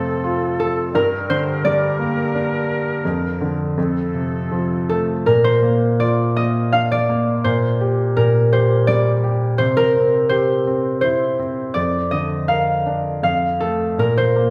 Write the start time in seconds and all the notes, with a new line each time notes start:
Already playing: F2 C3 F3 A3 C4 A4 F5
0.24 F4
0.60 A4
0.93 G2 G3 D4 A#4
1.30 D3 C5
1.65 G3 D5
1.99 A#3
2.35 D4
3.04 F2 F3 D4
3.41 D3
3.76 F2 F3 C4 A4
4.14 C3
4.52 F3
4.89 A3 A4
5.26 A#2 A#4
5.44 C5
5.62 A#3
6.00 F4 D5
6.36 A#3 D#5
6.72 D4 F5
6.92 D5
7.09 A#3
7.44 A#2 C5
7.81 G4
8.17 A#2 A#4
8.53 G4 C5
8.87 G3 D5
9.24 G4
9.58 C3 C5
9.77 A#4
9.96 C4
10.29 G4 C5
10.67 C4
11.01 E4 C5
11.39 C4
11.74 F2 D5
12.11 D3 D#5
12.48 A#4 F5
12.86 D4
13.23 F2 F5
13.60 A3 A4
13.98 A#2 A#4
14.17 C5
14.36 A#3